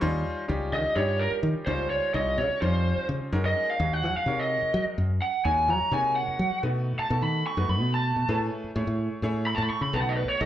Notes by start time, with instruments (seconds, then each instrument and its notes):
0.01 fingered electric bass D#2, grand piano G3 C#4 D#4 F4 C5
0.48 fingered electric bass C#2, grand piano G3 C#4 D#4 F4 G4
0.72 fingered electric bass D#3, lead electric guitar D#5
0.85 muted fingered electric bass stroke
0.96 fingered electric bass G2, grand piano G3 C#4 D#4 F4 G4, lead electric guitar C#5
1.19 lead electric guitar A#4
1.31 muted fingered electric bass stroke
1.43 fingered electric bass D#3
1.66 fingered electric bass C#2, grand piano G3 C#4 D#4 F4 C5, lead electric guitar C5
1.90 lead electric guitar C#5
2.14 fingered electric bass C2, grand piano G3 C#4 D#4 F4 C#5, lead electric guitar D#5
2.38 fingered electric bass C#3, lead electric guitar C#5
2.49 muted fingered electric bass stroke
2.61 fingered electric bass F2, grand piano G3 C#4 D#4 F4 C5, lead electric guitar C5
2.97 muted fingered electric bass stroke
3.09 fingered electric bass C#3
3.32 fingered electric bass F#2, grand piano G#3 C#4 D#4 F#4 A#4
3.46 lead electric guitar D#5
3.70 lead electric guitar F5
3.80 fingered electric bass D#2, grand piano G#3 C#4 D#4 F#4 G#4
3.93 lead electric guitar F#5
4.03 fingered electric bass F#3
4.15 lead electric guitar F5, muted fingered electric bass stroke
4.26 fingered electric bass C3, grand piano G#3 D#4 F#4 A#4 C#5
4.39 lead electric guitar D#5
4.62 muted fingered electric bass stroke
4.74 fingered electric bass F#3
4.98 fingered electric bass F#2
5.22 lead electric guitar F#5
5.45 fingered electric bass D#2, grand piano G#3 C#4 D#4 F#4 C#5, lead electric guitar G#5
5.68 fingered electric bass F#3, lead electric guitar A#5
5.80 muted fingered electric bass stroke
5.91 fingered electric bass C3, grand piano G#3 A#3 D#4 F#4 C#5, lead electric guitar G#5
6.16 lead electric guitar F#5
6.28 muted fingered electric bass stroke
6.39 fingered electric bass F#3
6.63 fingered electric bass B2, grand piano A3 B3 D#4 F#4 B4
6.99 lead electric guitar A5, muted fingered electric bass stroke
7.10 fingered electric bass B2, grand piano A3 B3 D#4 F#4 A4
7.22 fingered electric bass D#3, lead electric guitar B5
7.47 lead electric guitar C#6
7.57 fingered electric bass F#2, grand piano A3 B3 D#4 F#4 B4
7.69 fingered electric bass F#2, lead electric guitar B5
7.81 fingered electric bass B2
7.94 lead electric guitar A5
8.16 fingered electric bass B2
8.29 fingered electric bass A2, grand piano A3 C#4 E4 G#4 B4
8.64 muted fingered electric bass stroke
8.76 fingered electric bass A2, grand piano A3 C#4 E4 G#4 C#5
8.87 fingered electric bass A2
9.22 fingered electric bass A2, grand piano A3 C#4 E4 G#4 C#5
9.47 lead electric guitar B5
9.55 fingered electric bass A2, lead electric guitar A5
9.63 lead electric guitar B5
9.70 lead electric guitar C#6
9.81 fingered electric bass C#3, lead electric guitar B5
9.93 fingered electric bass B1, grand piano A3 B3 D#4 F#4 B4, lead electric guitar A5
10.02 lead electric guitar F#5
10.09 lead electric guitar D#5
10.17 lead electric guitar B4
10.28 lead electric guitar C#5, muted fingered electric bass stroke
10.41 fingered electric bass B1, grand piano A3 B3 D#4 F#4 A4, lead electric guitar D#5